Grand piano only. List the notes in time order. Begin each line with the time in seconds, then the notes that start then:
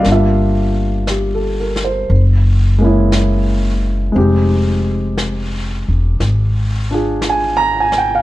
0.00 G3 A#3
0.06 D4 F4
0.12 E5
1.10 G4
1.35 A4
1.60 A#4
1.85 C5
2.79 G#3 A#3 C#4
2.84 E4
4.12 G#3 C4
4.16 D#4 G4
6.91 D4 F4 G#4
7.30 G#5
7.57 A#5
7.80 G#5
7.98 G5
8.15 F5